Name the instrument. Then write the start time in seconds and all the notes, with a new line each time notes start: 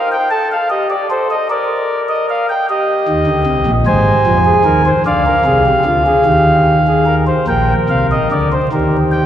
pipe organ
Already playing: A#4
0.12 G5
0.31 A4 A5
0.52 F5
0.70 G4 D#5
0.90 D5
1.10 A4 C5
1.30 D#5
1.50 A#4 D5
2.09 D#5
2.29 F5
2.49 G5
2.69 G4 D#5
3.08 D#2 D#3
3.27 D2 D3
3.47 C2 C3
3.67 A#1 A#2
3.86 G#1 G#2 C5 G#5
4.27 F2 F3
4.45 G#4
4.64 D#2 D#3 A#4
4.86 C5
5.06 D2 D3 D5 F5
5.26 A#4
5.45 C2 C3 G#4
5.66 G4
5.85 D2 D3 F4
6.06 G#4
6.26 D#2 D#3 G4
6.87 G#4
7.06 A#4
7.27 C5
7.48 A#1 A#2 A#4 G5
7.89 C2 C3 F5
8.11 D#5
8.32 D2 D3 D5
8.52 C5
8.72 D#2 D#3 G4 A#4
9.12 G5